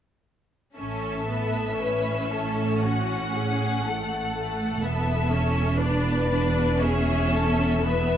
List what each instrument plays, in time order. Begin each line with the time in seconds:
0.77 double bass section A1, cello section A2, viola section C#4, violin section A4 E5
1.31 viola section B3
1.82 viola section C#4, violin section B4
2.33 violin section A4
2.84 violin section F#4 F#5
3.34 violin section G#4
3.86 viola section A3, violin section A4
4.36 viola section A3
4.82 double bass section E1, cello section E2, viola section B3, violin section E5
5.32 viola section C#4
5.80 viola section D4, violin section B4 D5
6.31 viola section D4
6.80 viola section C#4, violin section G#4 E5
7.34 violin section A4
7.86 viola section B3, violin section B4 E5